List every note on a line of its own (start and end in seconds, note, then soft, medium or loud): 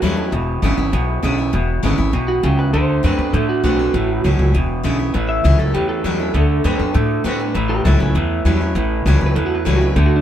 0.00 0.30 E2 medium
0.00 0.31 E2 medium
0.00 0.29 A2 medium
0.00 0.17 E3 medium
0.00 0.30 F#3 medium
0.00 0.17 G3 medium
0.00 0.17 C#4 medium
0.00 0.16 E4 loud
0.00 0.31 A4 medium
0.17 0.32 C#4 soft
0.17 0.32 E4 medium
0.32 0.61 E1 medium
0.32 0.59 E2 medium
0.32 0.90 E2 medium
0.32 0.60 B2 medium
0.62 0.77 G#1 medium
0.62 0.90 E2 medium
0.62 0.90 C#3 medium
0.62 0.77 D3 medium
0.62 0.77 G#3 medium
0.62 0.77 B3 medium
0.62 0.76 E4 medium
0.77 0.92 G#1 medium
0.77 0.93 B3 soft
0.77 0.92 E4 medium
0.93 1.22 B1 medium
0.93 1.20 E2 medium
0.93 1.50 B2 medium
0.93 1.20 B2 medium
1.23 1.52 B1 medium
1.23 1.50 E2 medium
1.23 1.50 C#3 medium
1.23 1.37 D3 medium
1.23 1.38 G#3 medium
1.23 1.38 B3 medium
1.23 1.37 E4 loud
1.38 1.53 B3 soft
1.38 1.52 E4 medium
1.53 1.82 E1 medium
1.53 2.10 E2 medium
1.53 1.80 E2 medium
1.53 1.80 B2 loud
1.83 1.98 G#1 loud
1.83 2.10 E2 medium
1.83 2.10 C#3 medium
1.83 1.97 D3 medium
1.83 1.97 G#3 medium
1.83 1.98 B3 medium
1.83 1.96 E4 medium
1.98 2.13 G#1 medium
1.98 2.13 B3 medium
1.98 2.12 E4 medium
2.13 2.42 B1 medium
2.13 2.40 E2 medium
2.13 2.42 B2 medium
2.13 2.41 B2 medium
2.28 2.43 F#4 loud
2.43 2.72 C#2 medium
2.43 2.70 E2 medium
2.43 2.72 C#3 medium
2.43 2.71 C#3 medium
2.43 2.58 G4 medium
2.59 2.73 B4 medium
2.73 3.02 D2 medium
2.73 3.01 D3 medium
2.73 3.02 D3 medium
2.73 3.01 A3 medium
2.73 3.17 C5 loud
3.03 3.18 F#2 medium
3.03 3.18 D3 medium
3.03 3.31 D3 medium
3.03 3.18 A3 medium
3.03 3.31 B3 medium
3.03 3.18 C4 medium
3.03 3.17 F#4 medium
3.18 3.33 F#2 medium
3.18 3.34 C4 soft
3.18 3.33 F#4 medium
3.18 3.33 B4 medium
3.33 3.62 A2 loud
3.33 3.91 A2 medium
3.33 3.61 D3 medium
3.33 3.61 A3 medium
3.33 3.48 A4 medium
3.49 3.63 F#4 medium
3.64 3.93 B1 medium
3.64 3.78 D3 medium
3.64 3.91 D3 medium
3.64 3.79 A3 medium
3.64 3.91 B3 medium
3.64 3.79 C4 medium
3.64 4.52 F#4 loud
3.64 3.78 F#4 medium
3.79 3.94 C4 soft
3.79 3.93 F#4 medium
3.94 4.23 A1 medium
3.94 4.21 A2 medium
3.94 4.51 A2 medium
3.94 4.21 E3 medium
4.24 4.38 C#2 loud
4.24 4.51 A2 medium
4.24 4.53 E3 medium
4.24 4.52 F#3 medium
4.24 4.53 C#4 medium
4.24 4.54 E4 medium
4.39 4.54 C#2 medium
4.54 4.83 E1 medium
4.54 4.81 E2 medium
4.54 5.12 E2 medium
4.54 4.81 B2 medium
4.83 5.13 B1 medium
4.83 5.11 E2 medium
4.83 5.12 C#3 medium
4.83 4.98 D3 medium
4.83 4.99 G#3 medium
4.83 4.99 B3 medium
4.83 4.98 E4 loud
4.99 5.14 B3 soft
4.99 5.13 E4 medium
5.14 5.43 A1 medium
5.14 5.41 A2 medium
5.14 5.71 A2 medium
5.14 5.41 E3 medium
5.29 5.58 E5 medium
5.44 5.59 C#2 loud
5.44 5.71 A2 medium
5.44 5.59 E3 medium
5.44 5.72 F#3 medium
5.44 5.59 G3 medium
5.44 5.59 C#4 medium
5.44 5.58 E4 medium
5.59 5.74 C#2 medium
5.59 5.74 C#4 soft
5.59 5.74 E4 medium
5.59 5.74 A4 medium
5.74 6.03 E2 medium
5.74 6.32 E2 medium
5.74 6.01 A2 medium
5.74 6.02 E3 loud
5.74 5.88 G4 medium
5.89 6.77 A4 medium
6.04 6.33 E2 medium
6.04 6.31 A2 medium
6.04 6.19 E3 medium
6.04 6.32 F#3 medium
6.04 6.19 G3 medium
6.04 6.20 C#4 medium
6.04 6.18 E4 loud
6.19 6.35 C#4 soft
6.19 6.34 E4 medium
6.34 6.63 D2 medium
6.34 6.61 D3 loud
6.34 6.63 D3 medium
6.34 6.62 A3 loud
6.64 6.79 F#2 medium
6.64 6.79 D3 medium
6.64 6.92 D3 medium
6.64 6.79 A3 medium
6.64 6.92 B3 medium
6.64 6.80 C4 medium
6.64 6.78 F#4 medium
6.79 6.94 F#2 medium
6.79 6.95 C4 soft
6.79 6.94 F#4 medium
6.94 7.52 A2 medium
6.94 7.24 A2 medium
6.94 7.22 D3 medium
6.94 7.22 A3 medium
7.24 7.54 A2 medium
7.24 7.39 D3 medium
7.24 7.52 D3 medium
7.24 7.39 A3 medium
7.24 7.52 B3 medium
7.24 7.40 C4 loud
7.24 7.38 F#4 loud
7.39 7.55 C4 soft
7.39 7.54 F#4 medium
7.54 7.84 A1 medium
7.54 7.82 A2 medium
7.54 8.12 A2 medium
7.54 7.82 E3 loud
7.69 7.84 G4 medium
7.69 7.84 B4 medium
7.84 8.00 C#2 loud
7.84 8.12 A2 medium
7.84 8.00 E3 medium
7.84 8.12 F#3 medium
7.84 8.00 G3 medium
7.84 8.00 C#4 medium
7.84 7.98 E4 medium
7.84 7.99 E4 medium
7.84 7.99 A4 medium
7.99 8.14 C#2 medium
7.99 8.15 C#4 medium
7.99 8.58 E4 loud
7.99 8.15 E4 medium
8.15 8.44 E2 medium
8.15 8.73 E2 medium
8.15 8.42 A2 medium
8.15 8.43 E3 medium
8.45 8.74 E2 medium
8.45 8.73 A2 medium
8.45 8.60 E3 medium
8.45 8.73 F#3 loud
8.45 8.60 G3 loud
8.45 8.60 C#4 medium
8.45 8.59 E4 medium
8.61 8.76 C#4 soft
8.61 8.75 E4 medium
8.75 9.04 A1 loud
8.75 9.03 A2 medium
8.75 9.33 A2 medium
8.75 9.03 E3 medium
9.06 9.20 C#2 loud
9.06 9.33 A2 medium
9.06 9.20 E3 medium
9.06 9.33 F#3 loud
9.06 9.21 G3 medium
9.06 9.21 C#4 loud
9.06 9.20 E4 loud
9.21 9.35 C#2 medium
9.21 9.36 C#4 soft
9.21 9.35 E4 medium
9.26 9.36 B4 medium
9.35 9.65 E2 medium
9.35 9.93 E2 medium
9.35 9.63 A2 medium
9.35 9.63 E3 medium
9.35 9.45 A4 medium
9.46 9.56 F#4 medium
9.55 9.65 B4 medium
9.65 9.95 C#2 medium
9.65 9.93 A2 medium
9.65 9.80 E3 medium
9.65 9.93 F#3 loud
9.65 9.80 G3 medium
9.65 9.80 C#4 loud
9.65 9.79 E4 loud
9.65 9.75 A4 medium
9.76 9.86 F#4 medium
9.81 9.96 C#4 soft
9.81 9.95 E4 medium
9.86 9.96 B4 medium
9.96 10.21 D2 loud
9.96 10.21 D3 medium
9.96 10.21 A3 medium
9.96 10.06 A4 medium
10.06 10.16 F#4 medium
10.16 10.21 D4 medium